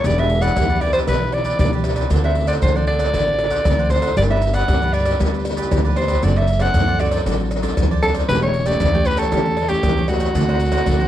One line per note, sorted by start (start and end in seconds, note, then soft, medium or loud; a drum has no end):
0.04 0.48 E1 loud
0.04 0.53 E3 medium
0.04 0.13 B3 medium
0.04 0.13 D4 medium
0.04 0.16 E4 soft
0.04 0.17 G4 medium
0.04 0.14 G4 medium
0.04 0.17 B4 medium
0.04 0.21 D5 loud
0.04 0.17 D5 medium
0.04 pandeiro medium
0.04 maracas medium
0.04 surdo medium
0.18 0.52 B3 medium
0.18 0.52 D4 medium
0.18 0.52 G4 medium
0.18 0.29 G4 medium
0.18 0.29 B4 medium
0.18 0.30 D5 medium
0.18 0.43 E5 medium
0.18 pandeiro soft
0.18 tamborim medium
0.18 maracas soft
0.29 muted cavaquinho stroke soft
0.29 pandeiro medium
0.42 0.55 G4 medium
0.42 0.55 B4 medium
0.42 0.54 D5 medium
0.42 0.83 F#5 loud
0.42 pandeiro medium
0.42 tamborim medium
0.42 maracas medium
0.42 surdo soft
0.55 0.99 E2 medium
0.55 1.05 B2 medium
0.55 1.04 B3 medium
0.55 1.04 D4 medium
0.55 0.68 E4 medium
0.55 1.04 G4 medium
0.55 0.68 G4 medium
0.55 0.69 B4 medium
0.55 0.68 D5 medium
0.55 pandeiro medium
0.55 tamborim medium
0.55 maracas medium
0.55 surdo loud
0.70 0.81 G4 medium
0.70 0.81 B4 medium
0.70 0.81 D5 medium
0.70 pandeiro soft
0.70 maracas soft
0.81 0.93 E4 medium
0.81 0.94 G4 medium
0.81 0.93 B4 medium
0.81 0.92 D5 loud
0.81 0.92 D5 medium
0.81 pandeiro medium
0.81 surdo soft
0.93 1.07 G4 medium
0.93 1.06 B4 medium
0.93 0.99 C5 medium
0.93 1.05 D5 medium
0.93 pandeiro medium
0.93 tamborim medium
0.93 maracas medium
0.93 surdo soft
1.07 1.51 B1 medium
1.07 1.56 E3 medium
1.07 1.41 B3 medium
1.07 1.41 D4 medium
1.07 1.32 E4 medium
1.07 1.32 G4 soft
1.07 1.41 G4 medium
1.07 1.35 B4 medium
1.07 1.33 D5 soft
1.07 pandeiro medium
1.07 tamborim medium
1.07 maracas medium
1.07 surdo medium
1.21 pandeiro soft
1.21 maracas soft
1.32 1.59 D5 loud
1.32 muted cavaquinho stroke soft
1.32 pandeiro medium
1.32 tamborim medium
1.44 1.71 G4 soft
1.44 1.70 B4 medium
1.44 1.70 D5 medium
1.44 pandeiro medium
1.44 maracas medium
1.44 surdo soft
1.59 2.03 B1 medium
1.59 2.08 B2 medium
1.59 1.80 B3 medium
1.59 1.81 D4 medium
1.59 1.81 G4 medium
1.59 1.72 D5 medium
1.59 pandeiro medium
1.59 tamborim medium
1.59 maracas medium
1.59 surdo loud
1.73 1.84 G4 medium
1.73 1.84 B4 medium
1.73 1.84 D5 medium
1.73 pandeiro soft
1.73 maracas soft
1.84 2.01 B3 medium
1.84 2.01 D4 medium
1.84 1.96 E4 soft
1.84 1.97 G4 medium
1.84 2.02 G4 medium
1.84 1.96 B4 medium
1.84 1.95 D5 medium
1.84 pandeiro medium
1.84 tamborim medium
1.84 maracas medium
1.96 2.10 G4 medium
1.96 2.09 B4 medium
1.96 2.09 D5 medium
1.96 pandeiro medium
1.96 tamborim medium
1.96 maracas medium
1.96 surdo soft
2.10 2.54 D2 loud
2.10 2.60 D3 medium
2.10 2.18 C4 medium
2.10 2.22 D4 medium
2.10 2.19 F#4 medium
2.10 2.23 A4 medium
2.10 2.19 A4 medium
2.10 2.23 C5 medium
2.10 2.23 F#5 medium
2.10 pandeiro medium
2.10 maracas medium
2.10 surdo medium
2.24 2.58 C4 medium
2.24 2.58 F#4 medium
2.24 2.59 A4 medium
2.24 2.35 A4 medium
2.24 2.35 C5 medium
2.24 2.47 E5 medium
2.24 2.36 F#5 medium
2.24 pandeiro soft
2.24 tamborim medium
2.24 maracas soft
2.35 muted cavaquinho stroke soft
2.35 pandeiro medium
2.47 2.61 A4 medium
2.47 2.61 C5 medium
2.47 2.54 D5 medium
2.47 2.60 F#5 medium
2.47 pandeiro medium
2.47 tamborim medium
2.47 maracas medium
2.47 surdo soft
2.62 3.11 A2 medium
2.62 3.06 D3 medium
2.62 3.10 C4 medium
2.62 2.74 D4 medium
2.62 3.10 F#4 medium
2.62 2.74 A4 medium
2.62 3.10 A4 medium
2.62 2.78 C5 medium
2.62 2.75 C5 medium
2.62 2.74 F#5 medium
2.62 pandeiro medium
2.62 tamborim medium
2.62 maracas medium
2.62 surdo loud
2.76 2.87 A4 medium
2.76 2.88 C5 medium
2.76 2.87 D5 medium
2.76 2.87 F#5 medium
2.76 pandeiro soft
2.76 maracas soft
2.87 2.99 D4 medium
2.87 3.00 A4 medium
2.87 2.99 C5 medium
2.87 3.92 D5 loud
2.87 2.98 F#5 medium
2.87 pandeiro medium
2.99 3.13 A4 medium
2.99 3.12 C5 medium
2.99 3.12 F#5 medium
2.99 pandeiro medium
2.99 tamborim medium
2.99 maracas medium
2.99 surdo soft
3.13 3.57 A1 medium
3.13 3.62 D3 medium
3.13 3.61 C4 medium
3.13 3.38 D4 soft
3.13 3.61 F#4 medium
3.13 3.61 A4 medium
3.13 3.38 A4 medium
3.13 3.39 C5 medium
3.13 3.39 F#5 soft
3.13 pandeiro medium
3.13 tamborim medium
3.13 maracas medium
3.13 surdo medium
3.27 pandeiro soft
3.27 maracas soft
3.39 muted cavaquinho stroke soft
3.39 pandeiro medium
3.39 tamborim medium
3.50 3.77 A4 medium
3.50 3.77 C5 medium
3.50 3.76 F#5 medium
3.50 pandeiro medium
3.50 maracas medium
3.50 surdo soft
3.65 4.09 D2 medium
3.65 4.14 A2 medium
3.65 3.87 C4 medium
3.65 3.87 F#4 medium
3.65 3.87 A4 medium
3.65 pandeiro medium
3.65 tamborim medium
3.65 maracas medium
3.65 surdo loud
3.79 3.90 A4 medium
3.79 3.91 C5 medium
3.79 3.90 F#5 medium
3.79 pandeiro soft
3.79 maracas soft
3.90 4.07 C4 medium
3.90 4.02 D4 soft
3.90 4.07 F#4 medium
3.90 4.07 A4 medium
3.90 4.03 A4 soft
3.90 4.16 C5 medium
3.90 4.03 C5 medium
3.90 4.01 F#5 medium
3.90 pandeiro medium
3.90 tamborim medium
3.90 maracas medium
4.02 4.16 A4 medium
4.02 4.16 C5 medium
4.02 4.15 F#5 medium
4.02 pandeiro medium
4.02 tamborim medium
4.02 maracas medium
4.02 surdo soft
4.16 4.60 G1 loud
4.16 4.65 G3 medium
4.16 4.25 B3 medium
4.16 4.25 D4 medium
4.16 4.29 D4 medium
4.16 4.25 G4 medium
4.16 4.29 G4 medium
4.16 4.29 B4 medium
4.16 4.23 D5 medium
4.16 4.29 D5 medium
4.16 pandeiro medium
4.16 maracas medium
4.16 surdo medium
4.30 4.64 B3 medium
4.30 4.64 D4 medium
4.30 4.65 G4 medium
4.30 4.42 G4 medium
4.30 4.42 B4 medium
4.30 4.42 D5 medium
4.30 4.56 E5 medium
4.30 pandeiro soft
4.30 tamborim medium
4.30 maracas soft
4.42 muted cavaquinho stroke soft
4.42 pandeiro medium
4.42 maracas medium
4.54 4.67 G4 medium
4.54 4.67 B4 medium
4.54 4.66 D5 medium
4.54 4.95 F#5 loud
4.54 pandeiro medium
4.54 tamborim medium
4.54 maracas medium
4.54 surdo soft
4.68 5.12 G2 medium
4.68 5.17 D3 medium
4.68 5.15 B3 medium
4.68 5.16 D4 medium
4.68 4.80 D4 medium
4.68 5.16 G4 medium
4.68 4.81 G4 medium
4.68 4.81 B4 medium
4.68 4.81 D5 medium
4.68 pandeiro medium
4.68 tamborim medium
4.68 maracas medium
4.68 surdo loud
4.82 4.92 G4 medium
4.82 4.93 B4 medium
4.82 4.93 D5 medium
4.82 pandeiro soft
4.82 maracas soft
4.93 5.05 D4 medium
4.93 5.06 G4 medium
4.93 5.05 B4 medium
4.93 5.19 D5 medium
4.93 5.04 D5 medium
4.93 pandeiro medium
4.93 maracas medium
4.93 surdo soft
5.05 5.19 G4 medium
5.05 5.18 B4 medium
5.05 5.18 D5 medium
5.05 pandeiro medium
5.05 tamborim medium
5.05 maracas medium
5.05 surdo soft
5.19 5.64 D2 medium
5.19 5.68 G3 medium
5.19 5.53 B3 medium
5.19 5.44 D4 soft
5.19 5.53 D4 medium
5.19 5.45 G4 medium
5.19 5.53 G4 medium
5.19 5.45 B4 medium
5.19 5.45 D5 medium
5.19 pandeiro medium
5.19 tamborim medium
5.19 maracas medium
5.19 surdo medium
5.34 pandeiro soft
5.34 maracas soft
5.45 muted cavaquinho stroke soft
5.45 pandeiro medium
5.45 tamborim medium
5.45 maracas medium
5.57 5.83 G4 medium
5.57 5.83 B4 medium
5.57 5.82 D5 medium
5.57 pandeiro medium
5.57 maracas medium
5.57 surdo soft
5.71 6.15 D2 medium
5.71 6.20 D3 medium
5.71 5.86 B3 medium
5.71 5.87 D4 medium
5.71 5.87 G4 medium
5.71 pandeiro medium
5.71 tamborim medium
5.71 maracas medium
5.71 surdo loud
5.85 5.96 G4 medium
5.85 5.97 B4 medium
5.85 5.96 D5 medium
5.85 pandeiro soft
5.85 maracas soft
5.96 6.13 B3 medium
5.96 6.08 D4 medium
5.96 6.13 D4 medium
5.96 6.13 G4 medium
5.96 6.09 G4 medium
5.96 6.08 B4 medium
5.96 6.25 C5 medium
5.96 6.07 D5 medium
5.96 pandeiro medium
5.96 tamborim medium
5.96 maracas medium
6.08 6.22 G4 medium
6.08 6.21 B4 medium
6.08 6.21 D5 medium
6.08 pandeiro medium
6.08 tamborim medium
6.08 maracas medium
6.08 surdo soft
6.23 6.67 F#1 loud
6.23 6.72 F#3 medium
6.23 6.47 C4 medium
6.23 6.47 D4 medium
6.23 6.35 F#4 medium
6.23 6.47 A4 medium
6.23 6.35 A4 medium
6.23 6.35 C5 medium
6.23 6.39 D5 medium
6.23 6.35 D5 medium
6.23 pandeiro medium
6.23 maracas medium
6.23 surdo medium
6.36 6.47 A4 medium
6.36 6.47 C5 medium
6.36 6.48 D5 medium
6.36 6.63 E5 medium
6.36 pandeiro soft
6.36 tamborim medium
6.36 maracas soft
6.47 muted cavaquinho stroke soft
6.47 pandeiro medium
6.47 maracas medium
6.59 6.95 C4 medium
6.59 6.95 D4 medium
6.59 6.95 A4 medium
6.59 6.73 A4 medium
6.59 6.73 C5 medium
6.59 6.72 D5 medium
6.59 7.01 F#5 loud
6.59 pandeiro medium
6.59 tamborim medium
6.59 maracas medium
6.59 surdo soft
6.74 7.18 F#2 medium
6.74 7.23 F#3 medium
6.74 6.86 F#4 medium
6.74 6.86 A4 medium
6.74 6.87 C5 medium
6.74 6.86 D5 medium
6.74 pandeiro medium
6.74 tamborim medium
6.74 maracas medium
6.74 surdo loud
6.87 6.99 A4 medium
6.87 6.99 C5 medium
6.87 6.99 D5 medium
6.87 pandeiro soft
6.87 maracas soft
6.99 7.21 C4 medium
6.99 7.22 D4 medium
6.99 7.11 F#4 medium
6.99 7.12 A4 medium
6.99 7.22 A4 medium
6.99 7.11 C5 medium
6.99 7.26 D5 medium
6.99 7.10 D5 medium
6.99 pandeiro medium
6.99 maracas medium
6.99 surdo soft
7.11 7.25 A4 medium
7.11 7.24 C5 medium
7.11 7.24 D5 medium
7.11 pandeiro medium
7.11 tamborim medium
7.11 maracas medium
7.11 surdo soft
7.26 7.69 A1 medium
7.26 7.75 F#3 medium
7.26 7.60 C4 medium
7.26 7.60 D4 medium
7.26 7.49 F#4 soft
7.26 7.50 A4 medium
7.26 7.61 A4 medium
7.26 7.50 C5 medium
7.26 7.51 D5 medium
7.26 pandeiro medium
7.26 tamborim medium
7.26 maracas medium
7.26 surdo medium
7.40 pandeiro soft
7.40 maracas soft
7.51 muted cavaquinho stroke soft
7.51 pandeiro medium
7.51 tamborim medium
7.51 maracas medium
7.62 7.98 C4 medium
7.62 7.98 D4 medium
7.62 7.98 A4 medium
7.62 7.89 A4 medium
7.62 7.89 C5 medium
7.62 7.88 D5 medium
7.62 pandeiro medium
7.62 maracas medium
7.62 surdo soft
7.77 8.21 D#2 medium
7.77 8.26 F#3 medium
7.77 pandeiro medium
7.77 tamborim medium
7.77 maracas medium
7.77 surdo loud
7.91 8.02 A4 medium
7.91 8.03 C5 medium
7.91 8.02 D5 medium
7.91 pandeiro soft
7.91 maracas soft
8.02 8.24 C4 medium
8.02 8.24 D4 medium
8.02 8.14 F#4 medium
8.02 8.14 A4 medium
8.02 8.25 A4 medium
8.02 8.15 A4 medium
8.02 8.14 C5 medium
8.02 8.13 D5 medium
8.02 pandeiro medium
8.02 tamborim medium
8.02 maracas medium
8.14 8.28 A4 medium
8.14 8.27 C5 medium
8.14 8.27 D5 medium
8.14 pandeiro medium
8.14 tamborim medium
8.14 maracas medium
8.14 surdo soft
8.29 8.72 E1 loud
8.29 8.78 E3 medium
8.29 8.53 A3 medium
8.29 8.53 C#4 medium
8.29 8.41 G4 medium
8.29 8.53 G4 medium
8.29 8.41 A4 medium
8.29 8.41 B4 loud
8.29 8.42 C#5 medium
8.29 8.42 G5 medium
8.29 pandeiro medium
8.29 maracas loud
8.29 surdo medium
8.42 8.53 A4 medium
8.42 8.68 C#5 loud
8.42 8.54 C#5 medium
8.42 8.54 G5 medium
8.42 pandeiro soft
8.42 tamborim medium
8.42 maracas soft
8.54 muted cavaquinho stroke soft
8.54 pandeiro medium
8.66 8.88 A3 medium
8.66 8.88 C#4 medium
8.66 8.89 G4 medium
8.66 8.80 A4 medium
8.66 8.79 C#5 medium
8.66 9.08 D5 loud
8.66 8.79 G5 medium
8.66 pandeiro medium
8.66 tamborim medium
8.66 maracas medium
8.66 surdo soft
8.80 9.24 E2 medium
8.80 9.29 E3 medium
8.80 8.92 G4 medium
8.80 8.93 A4 medium
8.80 8.93 C#5 medium
8.80 8.93 G5 medium
8.80 pandeiro medium
8.80 tamborim medium
8.80 maracas medium
8.80 surdo loud
8.94 9.28 A3 medium
8.94 9.28 C#4 medium
8.94 9.29 G4 medium
8.94 9.05 A4 medium
8.94 9.06 C#5 medium
8.94 9.05 G5 medium
8.94 pandeiro soft
8.94 maracas soft
9.05 9.18 G4 medium
9.05 9.18 A4 medium
9.05 9.20 B4 loud
9.05 9.17 C#5 medium
9.05 9.16 G5 medium
9.05 pandeiro medium
9.05 maracas medium
9.17 9.70 A4 loud
9.17 9.31 A4 medium
9.17 9.31 C#5 medium
9.17 9.30 G5 medium
9.17 pandeiro medium
9.17 tamborim medium
9.17 maracas medium
9.17 surdo soft
9.32 9.76 E2 medium
9.32 9.81 E3 medium
9.32 9.56 A3 medium
9.32 9.56 C#4 medium
9.32 9.56 G4 medium
9.32 9.57 G4 medium
9.32 9.56 A4 medium
9.32 9.56 C#5 medium
9.32 9.57 G5 medium
9.32 pandeiro medium
9.32 tamborim medium
9.32 maracas medium
9.32 surdo medium
9.45 pandeiro soft
9.45 maracas soft
9.57 muted cavaquinho stroke soft
9.57 pandeiro medium
9.57 tamborim medium
9.69 10.04 A3 medium
9.69 10.05 C#4 medium
9.69 10.08 G4 medium
9.69 10.05 G4 medium
9.69 9.95 A4 medium
9.69 9.95 C#5 medium
9.69 9.94 G5 medium
9.69 pandeiro medium
9.69 maracas medium
9.69 surdo soft
9.83 10.27 E2 medium
9.83 10.32 E3 medium
9.83 pandeiro medium
9.83 tamborim medium
9.83 maracas medium
9.83 surdo loud
9.97 10.08 A4 medium
9.97 10.09 C#5 medium
9.97 10.09 G5 medium
9.97 pandeiro soft
9.97 maracas soft
10.08 10.30 A3 medium
10.08 10.31 C#4 medium
10.08 11.08 F#4 medium
10.08 10.21 G4 soft
10.08 10.31 G4 medium
10.08 10.20 A4 soft
10.08 10.20 C#5 medium
10.08 10.18 G5 medium
10.08 pandeiro medium
10.08 tamborim medium
10.08 maracas medium
10.20 10.34 A4 medium
10.20 10.33 C#5 medium
10.20 10.33 G5 medium
10.20 pandeiro medium
10.20 tamborim medium
10.20 maracas medium
10.20 surdo soft
10.35 10.79 D2 loud
10.35 10.84 D3 medium
10.35 10.69 A3 medium
10.35 10.70 C4 medium
10.35 10.47 D4 soft
10.35 10.70 F#4 medium
10.35 10.47 A4 medium
10.35 10.47 C5 medium
10.35 10.48 F#5 medium
10.35 pandeiro medium
10.35 maracas medium
10.35 surdo medium
10.49 10.60 A4 medium
10.49 10.60 C5 medium
10.49 10.60 F#5 medium
10.49 pandeiro soft
10.49 tamborim medium
10.49 maracas soft
10.60 muted cavaquinho stroke soft
10.60 pandeiro medium
10.60 maracas medium
10.71 11.07 A3 medium
10.71 11.07 C4 medium
10.71 11.08 F#4 medium
10.71 10.86 A4 medium
10.71 10.85 C5 medium
10.71 10.85 F#5 medium
10.71 pandeiro medium
10.71 tamborim medium
10.71 maracas medium
10.71 surdo soft
10.86 11.08 A2 medium
10.86 11.08 D3 medium
10.86 10.98 D4 medium
10.86 10.99 A4 medium
10.86 10.99 C5 medium
10.86 10.99 F#5 medium
10.86 pandeiro medium
10.86 tamborim medium
10.86 maracas medium
10.86 surdo loud
11.00 11.08 A4 medium
11.00 11.08 C5 medium
11.00 11.08 F#5 medium
11.00 pandeiro soft
11.00 maracas soft